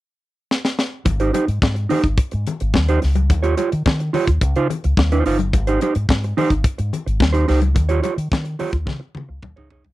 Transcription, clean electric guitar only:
1.05 muted clean electric guitar stroke soft
1.20 1.32 D#4 medium
1.20 1.33 G4 medium
1.20 1.33 C5 medium
1.33 1.46 D#4 medium
1.33 1.46 G4 medium
1.33 1.46 C5 medium
1.47 muted clean electric guitar stroke soft
1.75 muted clean electric guitar stroke soft
1.89 2.05 D#4 medium
1.89 2.03 G4 medium
1.89 2.03 C5 medium
2.04 muted clean electric guitar stroke soft
2.19 muted clean electric guitar stroke soft
2.32 muted clean electric guitar stroke soft
2.61 muted clean electric guitar stroke soft
2.75 muted clean electric guitar stroke soft
2.89 3.00 D#4 medium
2.89 3.01 G4 medium
2.89 3.01 C5 medium
3.02 muted clean electric guitar stroke soft
3.15 muted clean electric guitar stroke soft
3.30 muted clean electric guitar stroke soft
3.43 3.56 F4 medium
3.43 3.56 G4 medium
3.43 3.56 C#5 medium
3.57 3.69 F4 medium
3.57 3.69 G4 medium
3.57 3.70 C#5 medium
3.72 muted clean electric guitar stroke medium
4.00 muted clean electric guitar stroke soft
4.13 4.29 F4 medium
4.13 4.28 G4 medium
4.13 4.26 C#5 medium
4.28 muted clean electric guitar stroke soft
4.43 muted clean electric guitar stroke soft
4.56 4.69 D#4 medium
4.56 4.69 F4 medium
4.56 4.69 C5 medium
4.70 muted clean electric guitar stroke soft
4.84 muted clean electric guitar stroke medium
4.98 muted clean electric guitar stroke soft
5.12 5.25 D#4 medium
5.12 5.25 F4 medium
5.12 5.25 C5 medium
5.26 5.37 D#4 medium
5.26 5.38 F4 medium
5.26 5.38 C5 medium
5.40 muted clean electric guitar stroke soft
5.54 muted clean electric guitar stroke soft
5.67 5.81 D#4 medium
5.67 5.82 G4 medium
5.67 5.82 C5 medium
5.82 5.93 D#4 medium
5.82 5.94 G4 medium
5.82 5.94 C5 medium
5.96 muted clean electric guitar stroke soft
6.24 muted clean electric guitar stroke soft
6.37 6.52 D#4 medium
6.37 6.52 G4 medium
6.37 6.51 C5 medium
6.52 muted clean electric guitar stroke medium
6.65 muted clean electric guitar stroke soft
6.78 muted clean electric guitar stroke medium
7.06 muted clean electric guitar stroke soft
7.20 muted clean electric guitar stroke soft
7.33 7.47 D#4 medium
7.33 7.47 G4 medium
7.33 7.48 C5 medium
7.48 7.60 D#4 medium
7.48 7.60 G4 medium
7.48 7.61 C5 medium
7.63 muted clean electric guitar stroke soft
7.75 muted clean electric guitar stroke soft
7.89 8.01 F4 medium
7.89 8.02 G4 medium
7.89 8.02 C#5 medium
8.02 8.15 F4 soft
8.02 8.15 G4 medium
8.02 8.15 C#5 medium
8.16 muted clean electric guitar stroke soft
8.44 muted clean electric guitar stroke soft
8.59 8.75 F4 medium
8.59 8.73 G4 medium
8.59 8.72 C#5 loud
8.73 muted clean electric guitar stroke soft
8.86 muted clean electric guitar stroke soft
9.00 muted clean electric guitar stroke soft
9.29 muted clean electric guitar stroke soft
9.43 muted clean electric guitar stroke soft
9.56 9.70 D#4 medium
9.56 9.70 G#4 medium
9.56 9.71 C#5 medium
9.71 9.84 D#4 medium
9.71 9.84 G#4 medium
9.71 9.84 C#5 medium

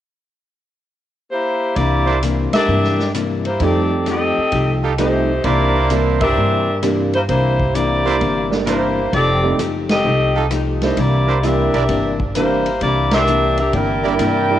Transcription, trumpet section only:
2.07 2.17 D4 medium
2.07 2.17 E4 medium
2.07 2.17 A#4 medium
2.07 2.17 C5 medium
4.83 4.93 D#4 medium
4.83 4.93 F4 medium
4.83 4.93 G4 medium
4.83 4.93 A4 medium
5.44 6.73 D4 medium
5.44 6.73 E4 medium
5.44 6.73 A#4 medium
5.44 6.73 C5 medium
8.05 8.16 D4 medium
8.05 8.16 E4 medium
8.05 8.16 A#4 medium
8.05 8.16 C5 medium
8.66 8.87 D4 medium
8.66 8.87 E4 medium
8.66 8.87 A#4 medium
8.66 8.87 C5 medium
10.35 10.46 D#4 medium
10.35 10.46 F4 medium
10.35 10.46 G4 medium
10.35 10.46 A4 medium
11.27 11.38 D4 medium
11.27 11.38 E4 medium
11.27 11.38 A#4 medium
11.27 11.38 C5 medium
11.74 11.84 D4 medium
11.74 11.84 E4 medium
11.74 11.84 A#4 medium
11.74 11.84 D5 medium
13.12 13.22 D4 medium
13.12 13.22 E4 medium
13.12 13.22 A#4 medium
13.12 13.22 C5 medium
14.04 14.14 D4 medium
14.04 14.14 E4 medium
14.04 14.14 A#4 medium
14.04 14.14 D5 medium

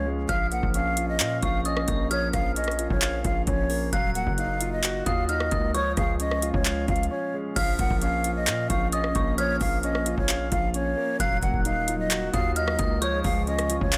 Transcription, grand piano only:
0.00 0.29 F3 loud
0.00 0.06 G#3 medium
0.00 0.31 C#4 medium
0.00 0.30 F4 medium
0.00 0.29 F5 loud
0.06 0.29 G#3 medium
0.29 1.43 F3 loud
0.52 1.65 A#3 medium
0.75 1.64 C#4 medium
0.97 1.41 F4 medium
1.20 2.33 F5 medium
1.43 2.56 F4 medium
1.65 2.55 C#4 medium
1.88 2.32 A#3 medium
2.11 3.24 F3 medium
2.34 3.47 A#3 medium
2.56 3.46 C#4 medium
2.79 3.23 F4 medium
3.02 3.93 F5 loud
3.25 3.93 F4 medium
3.47 3.93 C#4 medium
3.70 3.93 A#3 medium
3.93 5.06 F#3 loud
4.15 5.29 A#3 medium
4.38 5.27 D#4 medium
4.61 5.05 F4 medium
4.84 5.75 F#4 loud
5.06 5.75 F4 loud
5.29 5.74 D#4 medium
5.52 5.74 A#3 medium
5.74 6.88 F3 loud
5.97 7.11 G#3 medium
6.20 7.09 C#4 medium
6.43 6.87 F4 medium
6.65 7.56 F5 loud
6.88 7.56 F4 medium
7.11 7.56 C#4 medium
7.34 7.56 G#3 medium
7.56 8.70 F3 loud
7.79 8.93 A#3 medium
8.02 8.91 C#4 medium
8.25 8.69 F4 medium
8.47 9.61 F5 loud
8.70 9.84 F4 medium
8.93 9.82 C#4 medium
9.15 9.60 A#3 medium
9.38 10.52 F3 medium
9.61 10.75 A#3 medium
9.83 10.73 C#4 medium
10.06 10.50 F4 medium
10.29 11.20 F5 loud
10.52 11.20 F4 medium
10.74 11.20 C#4 medium
10.97 11.20 A#3 medium
11.20 12.34 F#3 loud
11.43 12.56 A#3 medium
11.66 12.55 D#4 medium
11.88 12.32 F4 medium
12.11 13.02 F#4 loud
12.34 13.02 F4 loud
12.56 13.02 D#4 medium
12.79 13.02 A#3 medium
13.02 13.98 F3 loud
13.24 13.98 G#3 medium
13.47 13.98 C#4 medium
13.70 13.98 F4 medium
13.93 13.98 F5 loud

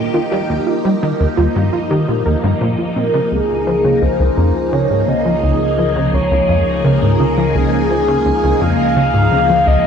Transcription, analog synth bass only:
0.00 0.11 A#2 medium
0.14 0.20 D#3 medium
0.32 0.41 G3 medium
0.50 0.59 D#2 medium
0.85 0.94 G3 medium
1.03 1.12 D#3 loud
1.20 1.26 D#2 medium
1.38 1.47 D#2 loud
1.56 1.70 G2 loud
1.91 2.05 D#3 medium
2.08 2.23 A#2 medium
2.26 2.35 D#2 medium
2.43 2.53 G2 loud
2.61 2.75 A#2 medium
2.96 3.11 A#2 medium
3.14 3.20 C#3 loud
3.32 3.41 C#2 medium
3.67 3.76 F3 medium
3.84 3.94 C#3 loud
4.02 4.08 C#2 medium
4.20 4.29 C#2 medium
4.37 4.52 F2 loud
4.73 4.87 C#3 loud
4.90 5.05 G#2 medium
5.08 5.14 C#3 medium
5.25 5.35 F3 medium
5.43 5.53 C#2 medium
5.79 5.88 F3 medium
5.96 6.06 C#3 loud
6.13 6.19 C#2 medium
6.31 6.41 C#2 medium
6.49 6.63 F2 medium
6.84 6.99 C#3 medium
7.02 7.17 G#2 medium
7.20 7.26 C#3 medium
7.37 7.47 F3 medium
7.55 7.65 C#2 medium
7.90 8.00 F3 medium
8.08 8.18 C#3 medium
8.26 8.32 C#2 loud
8.43 8.53 C#2 loud
8.61 8.75 F2 medium
8.96 9.11 C#3 medium
9.14 9.28 G#2 medium
9.32 9.37 C#3 medium
9.50 9.59 F3 medium
9.67 9.77 C#2 medium

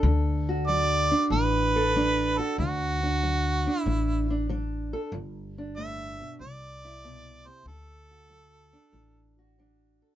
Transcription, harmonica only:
0.67 1.27 D5 loud
1.33 2.39 B4 loud
2.38 2.58 A4 medium
2.59 3.81 F#4 medium
3.81 4.45 E4 medium
5.77 6.36 E5 loud
6.41 7.48 D5 loud
7.47 7.67 C5 medium
7.68 9.53 A4 loud

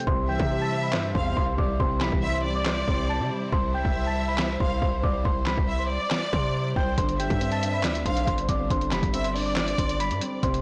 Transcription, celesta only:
0.07 0.26 C5 medium
0.07 0.26 C6 loud
0.29 0.59 G5 medium
0.29 0.59 G6 medium
0.61 0.80 A5 medium
0.61 0.80 A6 medium
0.83 1.13 B5 medium
0.83 1.13 B6 medium
1.15 1.34 C5 medium
1.15 1.33 C6 medium
1.37 1.56 C5 medium
1.37 1.55 C6 medium
1.58 1.77 D5 medium
1.58 1.77 D6 medium
1.80 1.99 C5 medium
1.80 1.98 C6 loud
2.01 2.32 B5 medium
2.01 2.32 B6 medium
2.34 2.53 C5 medium
2.34 2.52 C6 medium
2.55 2.86 D5 medium
2.55 2.86 D6 medium
2.88 3.07 C5 medium
2.88 3.06 C6 medium
3.09 3.28 A5 medium
3.09 3.28 A6 medium
3.53 3.72 C5 medium
3.53 3.71 C6 loud
3.74 4.05 G5 medium
3.74 4.05 G6 medium
4.06 4.25 A5 medium
4.06 4.26 A6 medium
4.28 4.58 B5 medium
4.28 4.59 B6 medium
4.60 4.79 C5 medium
4.60 4.79 C6 medium
4.82 5.01 C5 medium
4.82 5.00 C6 medium
5.03 5.22 D5 medium
5.03 5.22 D6 medium
5.25 5.44 C5 medium
5.25 5.44 C6 loud
5.47 5.77 B5 medium
5.47 5.78 B6 medium
5.79 5.98 C5 medium
5.79 5.98 C6 medium
6.01 6.31 D5 medium
6.01 6.31 D6 medium
6.33 6.74 C5 medium
6.33 6.74 C6 medium
6.76 6.95 G5 medium
6.76 6.95 G6 medium
6.98 7.17 C5 medium
6.98 7.16 C6 loud
7.19 7.50 G5 medium
7.19 7.50 G6 medium
7.52 7.70 A5 medium
7.52 7.71 A6 medium
7.73 8.04 B5 medium
7.73 8.04 B6 medium
8.06 8.25 C5 medium
8.06 8.24 C6 medium
8.28 8.46 C5 medium
8.28 8.46 C6 medium
8.49 8.68 D5 medium
8.49 8.68 D6 medium
8.71 8.90 C5 medium
8.71 8.89 C6 loud
8.92 9.22 B5 medium
8.92 9.23 B6 medium
9.24 9.43 C5 medium
9.24 9.43 C6 medium
9.46 9.77 D5 medium
9.46 9.76 D6 medium
9.79 9.97 C5 medium
9.79 9.97 C6 medium
10.00 10.19 B5 medium
10.00 10.19 B6 medium
10.43 10.62 C5 medium
10.43 10.62 C6 loud

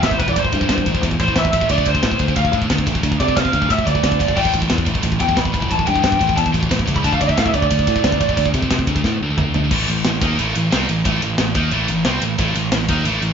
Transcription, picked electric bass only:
0.03 0.18 A1 medium
0.20 0.34 E1 medium
0.36 0.51 A1 medium
0.53 0.68 G2 medium
0.70 0.85 G2 medium
0.86 1.01 A1 medium
1.03 1.18 E2 medium
1.20 1.34 A1 medium
1.36 1.51 A1 medium
1.53 1.68 A1 medium
1.70 1.85 D2 medium
1.86 2.01 D2 medium
2.04 2.18 A2 medium
2.20 2.35 D2 medium
2.36 2.51 D2 loud
2.53 2.68 A2 medium
2.70 2.85 D2 medium
2.87 3.02 A1 medium
3.03 3.18 D2 medium
3.20 3.35 C3 medium
3.37 3.51 C3 medium
3.54 3.68 D2 medium
3.70 3.85 A2 medium
3.87 4.01 D2 medium
4.03 4.18 D2 loud
4.20 4.35 G1 medium
4.37 4.52 A1 medium
4.54 4.68 A1 medium
4.71 4.85 E2 medium
4.87 5.01 A1 loud
5.04 5.18 A1 medium
5.21 5.35 E2 medium
5.37 5.52 A1 medium
5.54 5.69 E1 medium
5.71 5.85 A1 medium
5.88 6.02 G2 medium
6.04 6.18 G2 medium
6.21 6.35 A1 loud
6.37 6.52 E2 medium
6.54 6.69 A1 medium
6.71 6.85 A1 loud
6.88 7.02 C#2 medium
7.05 7.19 D2 medium
7.21 7.36 D2 medium
7.38 7.52 A2 medium
7.54 7.69 D2 medium
7.71 7.85 D2 loud
7.87 8.02 A2 medium
8.04 8.19 D2 loud
8.21 8.35 A1 medium
8.37 8.52 D2 loud
8.54 8.69 C3 medium
8.71 8.86 C3 medium
8.87 9.02 D2 medium
9.04 9.19 A2 medium
9.21 9.36 D2 medium
9.37 9.52 D2 medium
9.54 9.69 D2 medium
9.71 9.87 A1 loud
9.88 10.04 A1 medium
10.05 10.20 A1 medium
10.22 10.37 D#2 loud
10.39 10.54 A1 loud
10.56 10.71 A1 medium
10.73 10.88 C2 loud
10.90 11.04 A1 medium
11.05 11.21 A1 medium
11.23 11.38 A1 medium
11.38 11.54 A1 medium
11.55 11.71 D#2 loud
11.71 11.87 A1 loud
11.89 12.04 A1 medium
12.05 12.21 C2 loud
12.22 12.37 A1 medium
12.39 12.54 A1 loud
12.56 12.71 A1 medium
12.72 12.87 A1 medium
12.89 13.04 D#2 loud
13.05 13.21 A1 loud
13.22 13.33 A1 medium

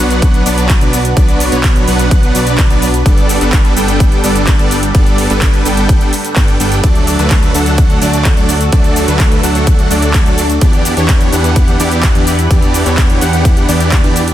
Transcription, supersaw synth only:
0.00 0.43 F#3 medium
0.00 0.43 B3 medium
0.00 0.43 D4 medium
0.00 0.43 B4 medium
0.00 0.43 F#5 loud
0.46 0.78 F#3 loud
0.46 0.78 B3 medium
0.46 0.78 D4 medium
0.46 0.78 B4 medium
0.46 0.78 D5 loud
0.81 0.98 F#3 medium
0.81 0.98 B3 medium
0.81 0.98 D4 medium
0.81 0.98 B4 medium
0.81 0.98 D5 loud
1.17 1.49 F#3 medium
1.17 1.49 B3 medium
1.17 1.49 D4 medium
1.17 1.49 B4 medium
1.17 1.49 D5 loud
1.52 1.85 F#3 loud
1.52 1.85 B3 medium
1.52 1.85 D4 medium
1.52 1.85 B4 medium
1.52 1.85 C#5 loud
1.88 2.32 F#3 loud
1.88 2.32 B3 medium
1.88 2.32 D4 medium
1.88 2.32 B4 medium
1.88 2.32 F#5 loud
2.35 2.67 F#3 loud
2.35 2.67 B3 medium
2.35 2.67 D4 medium
2.35 2.67 B4 loud
2.35 2.67 D5 loud
2.70 2.87 F#3 medium
2.70 2.87 B3 medium
2.70 2.87 D4 medium
2.70 2.87 B4 medium
2.70 2.87 D5 loud
3.06 3.38 G3 medium
3.06 3.38 B3 medium
3.06 3.38 D4 medium
3.06 3.38 A4 medium
3.06 3.38 D5 loud
3.41 3.74 G3 loud
3.41 3.74 B3 medium
3.41 3.74 D4 medium
3.41 3.74 A4 medium
3.41 3.74 B4 loud
3.77 4.21 G3 loud
3.77 4.21 B3 medium
3.77 4.21 D4 medium
3.77 4.21 A4 medium
3.77 4.21 G5 loud
4.24 4.56 G3 loud
4.24 4.56 B3 loud
4.24 4.56 D4 medium
4.24 4.57 A4 medium
4.24 4.56 D5 loud
4.59 4.76 G3 medium
4.59 4.76 B3 medium
4.59 4.76 D4 medium
4.59 4.76 A4 medium
4.59 4.76 D5 loud
4.95 5.27 G3 medium
4.95 5.27 B3 medium
4.95 5.27 D4 medium
4.95 5.27 A4 medium
4.95 5.27 D5 loud
5.30 5.63 G3 loud
5.30 5.63 B3 medium
5.30 5.63 D4 medium
5.30 5.63 A4 medium
5.30 5.63 B4 loud
5.65 6.10 G3 loud
5.65 6.10 B3 medium
5.65 6.10 D4 medium
5.65 6.10 A4 medium
5.65 6.10 G5 loud
6.36 6.53 G3 loud
6.36 6.53 B3 medium
6.36 6.53 D4 loud
6.36 6.53 A4 medium
6.36 6.53 G5 loud
6.60 6.77 G3 medium
6.60 6.77 B3 medium
6.60 6.77 D4 medium
6.60 6.77 A4 medium
6.60 6.77 G5 medium
6.84 7.16 F#3 medium
6.84 7.16 A3 medium
6.84 7.16 D4 medium
6.84 7.16 A4 medium
6.84 7.16 D5 medium
7.19 7.52 F#3 loud
7.19 7.52 A3 medium
7.19 7.52 D4 medium
7.19 7.52 A4 medium
7.19 7.52 B4 loud
7.55 7.99 F#3 loud
7.55 7.99 A3 medium
7.55 7.99 D4 medium
7.55 7.99 A4 medium
7.55 7.99 F#5 loud
8.02 8.34 F#3 loud
8.02 8.34 A3 medium
8.02 8.34 D4 medium
8.02 8.34 A4 medium
8.02 8.34 D5 loud
8.37 8.54 F#3 medium
8.37 8.54 A3 medium
8.37 8.54 D4 medium
8.37 8.54 A4 medium
8.37 8.54 D5 loud
8.73 9.05 F#3 medium
8.73 9.05 A3 medium
8.73 9.05 D4 medium
8.73 9.05 A4 medium
8.73 9.05 D5 medium
9.08 9.41 F#3 loud
9.08 9.41 A3 medium
9.08 9.41 D4 medium
9.08 9.41 A4 loud
9.08 9.41 B4 loud
9.43 9.88 F#3 loud
9.43 9.88 A3 medium
9.43 9.88 D4 medium
9.43 9.88 A4 medium
9.43 9.88 F#5 loud
9.91 10.23 F#3 loud
9.91 10.23 A3 loud
9.91 10.23 D4 medium
9.91 10.23 A4 medium
9.91 10.23 D5 loud
10.26 10.43 F#3 medium
10.26 10.43 A3 medium
10.26 10.43 D4 medium
10.26 10.43 A4 medium
10.26 10.43 D5 loud
10.61 10.94 E3 medium
10.61 10.94 B3 medium
10.61 10.94 D4 medium
10.61 10.94 G4 medium
10.61 10.94 D5 medium
10.97 11.30 E3 loud
10.97 11.30 B3 medium
10.97 11.30 D4 medium
10.97 11.30 G4 medium
10.97 11.30 C#5 loud
11.32 11.77 E3 loud
11.32 11.77 B3 medium
11.32 11.77 D4 medium
11.32 11.77 G4 medium
11.32 11.77 F#5 loud
11.80 12.12 E3 loud
11.80 12.12 B3 medium
11.80 12.12 D4 loud
11.80 12.12 G4 medium
11.80 12.12 D5 loud
12.15 12.32 E3 medium
12.15 12.32 B3 medium
12.15 12.32 D4 medium
12.15 12.32 G4 medium
12.15 12.32 D5 loud
12.51 12.83 E3 medium
12.51 12.83 B3 medium
12.51 12.83 D4 medium
12.51 12.83 G4 medium
12.51 12.83 D5 loud
12.86 13.19 E3 loud
12.86 13.19 B3 medium
12.86 13.19 D4 medium
12.86 13.19 G4 medium
12.86 13.19 C#5 loud
13.21 13.66 E3 loud
13.21 13.66 B3 medium
13.21 13.66 D4 medium
13.21 13.66 G4 medium
13.21 13.66 F#5 loud
13.69 14.01 E3 loud
13.69 14.01 B3 loud
13.69 14.01 D4 medium
13.69 14.01 G4 medium
13.69 14.01 D5 loud
14.04 14.21 E3 medium
14.04 14.21 B3 medium
14.04 14.21 D4 medium
14.04 14.21 G4 medium
14.04 14.21 D5 loud

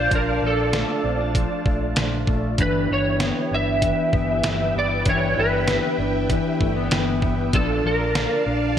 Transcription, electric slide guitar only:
0.00 0.14 C5 medium
0.15 0.45 A#4 medium
0.47 1.02 A4 medium
2.62 2.92 B4 medium
2.93 3.55 C#5 medium
3.54 4.78 E5 loud
4.79 5.09 D5 medium
5.09 5.39 C#5 medium
5.39 5.96 B4 medium
7.55 7.83 A4 medium
7.87 8.43 A#4 medium

